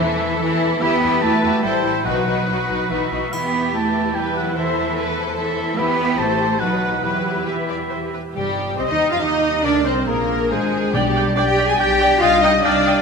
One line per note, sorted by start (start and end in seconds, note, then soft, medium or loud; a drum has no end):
0.00 0.18 E2 medium
0.00 0.41 E2 medium
0.00 0.40 E3 medium
0.00 0.41 E3 medium
0.00 0.81 E3 medium
0.00 0.84 A3 soft
0.00 0.40 E4 medium
0.00 0.61 E4 soft
0.00 0.82 A4 medium
0.00 0.40 E5 medium
0.22 0.84 C5 soft
0.41 0.81 E2 medium
0.41 0.81 E3 medium
0.41 0.82 E3 medium
0.41 0.82 E4 medium
0.41 0.84 A4 medium
0.41 0.83 E5 medium
0.81 0.90 E2 medium
0.81 1.65 E3 medium
0.81 1.22 B3 medium
0.81 1.01 E4 medium
0.81 1.22 G4 medium
0.81 1.20 G4 medium
0.81 1.02 G4 medium
0.81 1.02 B4 medium
0.81 1.23 B5 medium
1.02 1.10 E2 medium
1.02 2.07 G3 soft
1.02 1.21 E4 medium
1.02 1.22 G4 soft
1.02 1.22 B4 medium
1.22 1.30 E2 medium
1.22 1.64 A3 medium
1.22 1.42 E4 medium
1.22 1.83 E4 soft
1.22 1.63 F#4 medium
1.22 1.43 G4 medium
1.22 1.64 B4 medium
1.22 1.43 B4 medium
1.22 1.62 A5 medium
1.43 1.51 E2 medium
1.43 1.62 E4 soft
1.43 1.64 G4 soft
1.43 1.65 B4 soft
1.43 1.64 B4 soft
1.63 1.71 A1 medium
1.63 2.07 A2 medium
1.63 2.06 G3 medium
1.63 1.83 E4 soft
1.63 2.05 E4 medium
1.63 1.84 A4 medium
1.63 2.05 C5 medium
1.63 2.06 C5 medium
1.63 1.84 C5 soft
1.63 2.04 G5 medium
1.84 1.92 A1 soft
1.84 2.07 C4 soft
1.84 2.05 E4 soft
1.84 2.07 E4 soft
1.84 2.06 A4 soft
1.84 2.06 C5 soft
2.05 2.14 B1 soft
2.05 2.65 B2 medium
2.05 3.35 B2 soft
2.05 2.89 F#3 medium
2.05 2.26 D#4 soft
2.05 2.90 D#4 soft
2.05 2.26 F#4 soft
2.05 3.10 B4 medium
2.05 2.27 B4 soft
2.05 2.89 F#5 medium
2.27 2.35 B1 soft
2.27 3.35 F#3 soft
2.27 2.48 D#4 soft
2.27 2.48 F#4 soft
2.27 2.48 B4 soft
2.48 2.57 B1 soft
2.48 3.11 D#4 soft
2.48 2.68 D#4 soft
2.48 2.69 F#4 soft
2.48 2.68 F#4 soft
2.48 2.69 B4 soft
2.69 2.78 B1 soft
2.69 2.89 D#4 soft
2.69 2.89 F#4 soft
2.69 2.90 F#4 soft
2.69 3.95 B4 soft
2.69 2.89 B4 soft
2.90 2.99 B1 soft
2.90 3.33 E3 medium
2.90 3.10 D#4 soft
2.90 3.01 D#4 soft
2.90 3.35 F#4 soft
2.90 3.10 F#4 soft
2.90 3.11 F#4 soft
2.90 3.01 F#4 soft
2.90 3.11 B4 soft
2.90 3.34 E5 soft
3.11 3.20 B1 soft
3.11 3.33 D#4 soft
3.11 3.35 D#4 soft
3.11 3.33 F#4 soft
3.11 3.33 B4 soft
3.32 5.74 E2 medium
3.32 4.56 E3 soft
3.32 3.74 B3 medium
3.32 5.74 E4 soft
3.32 4.13 G4 medium
3.32 4.54 G4 soft
3.32 4.54 B4 medium
3.32 3.74 B5 medium
3.32 triangle soft
3.54 4.59 G3 soft
3.74 4.17 A3 medium
3.74 4.36 E4 soft
3.74 4.16 A5 medium
3.96 4.59 B4 soft
4.15 4.37 G3 medium
4.15 4.57 B4 soft
4.15 4.36 G5 medium
4.37 4.58 F#3 medium
4.37 4.98 E4 soft
4.37 4.57 F#5 medium
4.57 5.37 E3 medium
4.57 5.78 E3 soft
4.57 5.74 A4 medium
4.57 4.97 C5 medium
4.57 5.74 C5 medium
4.57 5.10 E5 medium
4.78 5.80 A3 soft
4.98 5.38 B4 medium
5.38 5.78 E3 medium
5.38 5.77 A4 medium
5.38 5.80 A4 soft
5.38 5.79 E5 medium
5.59 5.98 E4 soft
5.78 6.18 E2 medium
5.78 6.20 E3 medium
5.78 6.18 B3 medium
5.78 6.16 E4 medium
5.78 6.56 E4 medium
5.78 6.15 G4 medium
5.78 6.16 G4 medium
5.78 6.19 G4 medium
5.78 6.16 B4 medium
5.78 6.19 B5 medium
5.99 6.20 B3 soft
5.99 6.39 E4 soft
6.18 6.60 A1 medium
6.18 6.62 A2 medium
6.18 6.60 A3 medium
6.18 6.59 E4 medium
6.18 6.59 G4 medium
6.18 6.58 G4 medium
6.18 6.57 A4 soft
6.18 6.57 C5 medium
6.18 6.60 C5 medium
6.18 6.61 A5 medium
6.40 6.62 C4 soft
6.40 6.62 E4 soft
6.59 7.03 B1 soft
6.59 7.05 B2 medium
6.59 7.02 F#3 medium
6.59 7.02 D#4 soft
6.59 7.01 D#4 soft
6.59 7.02 F#4 soft
6.59 7.01 F#4 soft
6.59 8.10 B4 medium
6.59 7.03 B4 medium
6.59 7.03 F#5 medium
6.83 8.38 B3 soft
6.83 7.06 D#4 soft
7.03 8.12 E2 soft
7.03 8.38 E3 soft
7.03 7.46 F#3 medium
7.03 7.45 E4 soft
7.03 8.10 E4 soft
7.03 7.45 G4 soft
7.03 8.11 G4 soft
7.03 7.42 B4 soft
7.03 7.46 F#5 medium
7.26 8.45 G3 soft
7.46 8.13 E3 soft
7.46 8.11 E4 soft
7.46 8.12 E4 soft
7.46 8.11 G4 soft
7.46 7.55 B4 soft
7.46 8.12 E5 soft
7.69 8.37 B4 soft
7.69 7.77 D5 soft
7.91 8.67 G4 soft
7.91 7.99 C5 soft
8.13 8.37 E4 soft
8.13 8.22 B4 soft
8.34 8.75 G1 medium
8.34 9.62 C3 soft
8.34 8.76 G3 medium
8.34 8.75 G4 medium
8.34 8.76 G4 medium
8.46 9.51 G3 soft
8.57 9.30 D#4 soft
8.68 9.19 G4 soft
8.77 8.90 C2 medium
8.77 8.83 C4 medium
8.77 8.89 C5 medium
8.77 8.90 C5 medium
8.77 9.19 D#5 medium
8.89 8.97 D#2 medium
8.89 9.10 D#4 medium
8.89 8.99 D#4 medium
8.89 9.11 D#4 medium
8.89 9.11 D#5 medium
9.00 9.66 G5 soft
9.10 9.21 F2 medium
9.10 9.21 F4 medium
9.10 9.16 F4 medium
9.10 10.95 C5 soft
9.10 9.21 F5 medium
9.10 9.22 F5 medium
9.10 9.22 F5 soft
9.21 9.63 D#2 medium
9.21 9.63 D#4 medium
9.21 9.64 D#4 medium
9.21 9.66 G4 soft
9.21 9.64 D#5 medium
9.31 9.65 D#4 soft
9.42 9.73 C4 soft
9.53 9.65 G3 soft
9.63 9.86 D2 medium
9.63 10.95 C3 soft
9.63 9.85 D4 medium
9.63 9.86 D4 medium
9.63 10.09 A#4 medium
9.63 9.86 D5 medium
9.63 9.73 D5 medium
9.74 10.81 C4 soft
9.85 10.07 C2 medium
9.85 9.93 C4 medium
9.85 10.07 C4 medium
9.85 10.08 C4 medium
9.85 10.60 D4 soft
9.85 10.08 C5 medium
9.85 10.07 C5 medium
9.85 9.95 C5 medium
9.96 10.49 F4 soft
10.07 10.51 A#1 medium
10.07 10.50 A#3 medium
10.07 10.38 G#4 soft
10.07 10.51 G#4 soft
10.07 10.51 A#4 medium
10.07 10.50 A#4 medium
10.18 11.45 D5 soft
10.28 10.95 F5 soft
10.40 10.95 G#4 soft
10.50 10.94 G#1 medium
10.50 10.94 G#3 medium
10.50 10.93 G#3 medium
10.50 10.94 G#3 medium
10.50 10.95 F4 soft
10.50 10.93 G#4 medium
10.50 10.94 G#4 medium
10.50 10.96 C5 medium
10.61 11.14 D4 soft
10.72 10.95 G#3 soft
10.83 10.95 C4 soft
10.93 11.31 B1 medium
10.93 12.23 B2 medium
10.93 11.53 B2 medium
10.93 11.35 G3 medium
10.93 11.34 G3 medium
10.93 11.34 D4 medium
10.93 11.35 G4 medium
10.93 11.36 G4 medium
10.93 11.02 D5 medium
10.93 12.21 D5 medium
10.93 11.02 G5 soft
11.04 11.98 B3 soft
11.15 11.35 D4 soft
11.15 11.23 D5 soft
11.15 11.23 G5 medium
11.36 11.74 B1 medium
11.36 11.79 G3 medium
11.36 11.77 D4 soft
11.36 11.47 D4 medium
11.36 11.78 D4 medium
11.36 11.40 D5 medium
11.36 11.47 D5 medium
11.36 11.45 D5 soft
11.36 11.47 D5 medium
11.36 11.45 G5 medium
11.46 11.68 G4 medium
11.46 11.67 G5 medium
11.46 11.55 G5 medium
11.46 11.53 G5 medium
11.58 11.66 D5 soft
11.58 12.84 G5 soft
11.58 11.66 G5 medium
11.67 12.52 G4 medium
11.67 11.79 G#4 medium
11.67 11.78 G#5 medium
11.67 11.79 G#5 medium
11.79 12.17 B1 medium
11.79 12.21 G3 medium
11.79 12.23 D4 medium
11.79 12.21 D4 medium
11.79 12.21 G4 medium
11.79 11.87 D5 soft
11.79 12.20 G5 medium
11.79 12.21 G5 medium
11.79 11.88 G5 medium
11.89 12.09 G3 medium
12.00 12.23 B3 soft
12.00 12.09 D5 medium
12.00 12.09 G5 medium
12.11 13.02 G3 soft
12.21 12.59 C2 medium
12.21 13.02 C3 medium
12.21 13.02 G3 medium
12.21 13.02 D#4 medium
12.21 12.42 F4 loud
12.21 12.63 D#5 medium
12.21 12.30 D#5 medium
12.21 12.42 F5 medium
12.21 12.30 G5 medium
12.32 13.02 C4 soft
12.42 12.62 D#4 soft
12.42 12.50 D#4 medium
12.42 12.63 D#5 medium
12.42 12.64 D#5 medium
12.42 12.51 D#5 medium
12.42 12.51 G5 medium
12.53 12.94 G4 medium
12.63 13.01 C2 medium
12.63 13.02 D4 medium
12.63 13.02 D#4 medium
12.63 13.02 D5 medium
12.63 12.73 D#5 medium
12.63 13.02 F5 medium
12.63 12.73 G5 medium
12.74 13.02 D#5 medium
12.85 12.94 D#5 medium
12.85 13.02 G5 medium
12.85 12.94 G5 medium
12.96 13.02 G4 medium